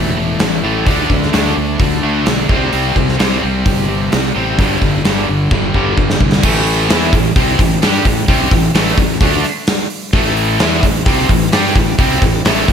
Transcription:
Already playing: E1 A2 E3 A3
0.17 A2 E3
0.39 A1 A2 E3, snare, open hi-hat
0.64 A1 A2 E3 A3
0.86 D2 D3 A3 D4, kick, open hi-hat
1.09 D2 D3 A3, kick
1.23 snare
1.33 D2 D3 A3 D4, snare, open hi-hat
1.57 D2 D3 A3
1.80 D2 D3 A3 D4, kick, open hi-hat
2.03 D2 D3 A3 D4
2.26 B1 D3 A3, snare, open hi-hat
2.49 C2 C3 G3 C4, kick
2.72 C2 C3 G3 C4, open hi-hat
2.96 C2 C3 G3, kick
3.09 snare
3.19 C2 C3 G3 C4, snare, open hi-hat
3.43 C2 C3 G3 C4
3.65 G1 C3 G3, kick, open hi-hat
3.89 C3 G3
4.12 C2 C3 G3, snare, open hi-hat
4.36 A1 C3 G3 C4
4.58 G1 G2 D3 G3, kick, open hi-hat
4.81 G1 G2 D3, kick
5.05 G1 G2 D3 G3, snare, open hi-hat
5.28 G1 G2 D3
5.51 G1 G2 D3 G3, kick
5.74 G1 G2 D3 G3, kick
5.97 G1 G2 D3, kick
6.10 snare
6.20 C2 G2 D3, kick
6.32 snare
6.43 A1 A2 E3 A3, kick, crash
6.67 open hi-hat
6.90 E2 E3 B3 E4, snare, open hi-hat
7.13 A1 A2 E3, kick, open hi-hat
7.36 C2 C3 G3 C4, kick, open hi-hat
7.59 A1 A2 E3, kick, snare, open hi-hat
7.82 G2 G3 D4 G4, snare, open hi-hat
8.05 A1 A2 E3, kick, open hi-hat
8.28 C2 C3 G3 C4, kick, open hi-hat
8.51 A1 A2 E3, kick, open hi-hat
8.75 A1 A2 E3 A3, snare, open hi-hat
8.97 A1 A2 E3, kick, open hi-hat
9.20 D2 D3 A3 D4, kick, open hi-hat
9.44 snare, open hi-hat
9.67 snare, open hi-hat
9.90 open hi-hat
10.13 A1 A2 E3 A3, kick, open hi-hat
10.37 open hi-hat
10.60 E2 E3 B3 E4, snare, open hi-hat
10.82 A1 A2 E3, kick, open hi-hat
11.05 C2 C3 G3 C4, kick, open hi-hat
11.28 A1 A2 E3, kick, open hi-hat
11.52 G2 G3 D4 G4, snare, open hi-hat
11.75 A1 A2 E3, kick, open hi-hat
11.98 C2 C3 G3 C4, kick, open hi-hat
12.21 A1 A2 E3, kick, open hi-hat
12.45 A1 A2 E3 A3, snare, open hi-hat
12.68 A1 A2 E3, kick, open hi-hat

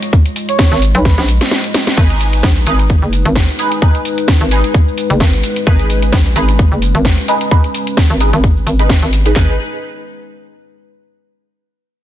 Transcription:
Already playing: G#3 F4 D#5
0.03 closed hi-hat, cabasa
0.13 kick, cabasa
0.26 closed hi-hat, cabasa
0.36 open hi-hat, cabasa
0.49 C#5, closed hi-hat, cabasa
0.59 kick, snare, cabasa
0.71 G#1, snare, closed hi-hat, cabasa
0.82 open hi-hat, cabasa
0.95 B1 B4, closed hi-hat, cabasa
1.05 B4, kick, snare, cabasa
1.18 A#1, snare, closed hi-hat, cabasa
1.28 open hi-hat, cabasa
1.41 snare, closed hi-hat, cabasa
1.51 snare, cabasa
1.64 closed hi-hat, cabasa
1.74 snare, open hi-hat, cabasa
1.87 snare, closed hi-hat, cabasa
1.97 G#1 G#3 D#4 G#4 B4, kick, crash, cabasa
2.10 closed hi-hat, cabasa
2.21 open hi-hat, cabasa
2.33 closed hi-hat, cabasa
2.43 A#1, kick, snare, cabasa
2.56 closed hi-hat, cabasa
2.67 G#1 D#4 G#4 B4, open hi-hat, cabasa
2.79 closed hi-hat, cabasa
2.90 kick, cabasa
3.02 F#1, cabasa
3.13 open hi-hat, cabasa
3.25 G#1, closed hi-hat, cabasa
3.36 kick, snare, cabasa
3.49 closed hi-hat, cabasa
3.59 D#4 G#4 B4, open hi-hat, cabasa
3.72 closed hi-hat, cabasa
3.82 D#4 G#4 B4, kick, cabasa
3.95 closed hi-hat, cabasa
4.05 open hi-hat, cabasa
4.18 closed hi-hat, cabasa
4.28 kick, snare, cabasa
4.41 G#1, closed hi-hat, cabasa
4.51 D#4 G#4 B4, open hi-hat, cabasa
4.64 closed hi-hat, cabasa
4.74 kick, cabasa
4.88 cabasa
4.98 open hi-hat, cabasa
5.10 F#1, closed hi-hat, cabasa
5.20 G#1, kick, snare, cabasa
5.33 closed hi-hat, cabasa
5.44 open hi-hat, cabasa
5.56 closed hi-hat, cabasa
5.67 G#1 C#4 D#4 G#4 B4, kick, cabasa
5.79 closed hi-hat, cabasa
5.90 open hi-hat, cabasa
6.02 closed hi-hat, cabasa
6.13 A#1, kick, snare, cabasa
6.26 closed hi-hat, cabasa
6.36 G#1 D#4 G#4 B4, open hi-hat, cabasa
6.49 closed hi-hat, cabasa
6.59 kick, cabasa
6.72 F#1, cabasa
6.82 open hi-hat, cabasa
6.95 G#1, closed hi-hat, cabasa
7.05 kick, snare, cabasa
7.18 closed hi-hat, cabasa
7.28 D#4 G#4 B4, open hi-hat, cabasa
7.41 closed hi-hat, cabasa
7.51 D#4 G#4 B4, kick, cabasa
7.64 closed hi-hat, cabasa
7.74 open hi-hat, cabasa
7.87 closed hi-hat, cabasa
7.97 kick, snare, cabasa
8.10 G#1, closed hi-hat, cabasa
8.21 D#4 G#4 B4, open hi-hat, cabasa
8.33 G#1, closed hi-hat, cabasa
8.44 kick, cabasa
8.57 cabasa
8.67 G#1, open hi-hat, cabasa
8.79 D#4 G#4 B4, closed hi-hat, cabasa
8.90 kick, snare, cabasa
9.02 G#1, closed hi-hat, cabasa
9.13 open hi-hat, cabasa
9.26 D#4 G#4 B4, closed hi-hat, cabasa
9.36 G#1 G#3 D#4 G#4 B4, kick, snare, clap

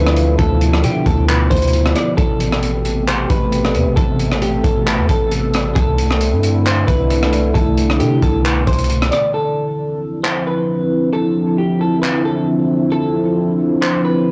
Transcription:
Already playing: D2 B2 D3 F3 E4 B4
0.07 cross-stick
0.16 closed hi-hat
0.39 D2 A4, kick, closed hi-hat
0.61 closed hi-hat
0.73 cross-stick
0.84 D3 G4, closed hi-hat
1.06 D2 A4, kick, closed hi-hat
1.28 B4, clap, closed hi-hat
1.50 D2 C5, kick, closed hi-hat
1.56 closed hi-hat
1.62 closed hi-hat
1.68 closed hi-hat
1.73 closed hi-hat
1.86 cross-stick
1.95 D5, cross-stick, closed hi-hat
2.17 A1 C3 A3 G4 A4, kick, closed hi-hat
2.40 closed hi-hat
2.52 cross-stick
2.63 closed hi-hat
2.85 closed hi-hat
3.08 C5, clap, closed hi-hat
3.30 A1 B4, kick, closed hi-hat
3.52 closed hi-hat
3.65 cross-stick
3.75 E2, closed hi-hat
3.86 A1
3.96 A1 A4, kick, closed hi-hat
4.19 closed hi-hat
4.32 cross-stick
4.42 G4, closed hi-hat
4.64 A1 A4, kick, closed hi-hat
4.86 B4, clap, closed hi-hat
4.98 E2
5.09 A1 A4, kick, closed hi-hat
5.31 closed hi-hat
5.54 cross-stick, closed hi-hat
5.75 C2 D3 A3 C4 E4 A4, kick, closed hi-hat
5.98 closed hi-hat
6.11 cross-stick
6.21 closed hi-hat
6.32 G2
6.43 closed hi-hat
6.66 C5, clap, closed hi-hat
6.87 C2 B4, kick, closed hi-hat
7.10 closed hi-hat
7.23 cross-stick
7.33 closed hi-hat
7.54 C2 B2 A4, kick, closed hi-hat
7.77 closed hi-hat
7.90 cross-stick
8.00 C3 G4, closed hi-hat
8.22 C2 A4, kick, closed hi-hat
8.45 B4, clap, closed hi-hat
8.67 C2 C5, kick, closed hi-hat
8.73 closed hi-hat
8.78 closed hi-hat
8.84 closed hi-hat
8.90 closed hi-hat
9.02 cross-stick
9.11 D5, cross-stick, closed hi-hat
9.34 D3 F3 C4 E4 A4
10.23 C5, clap
10.47 B4
11.13 A4
11.58 G4
11.81 A4
12.02 B4, clap
12.25 A4
12.92 A4
13.81 C5, clap
14.05 B4

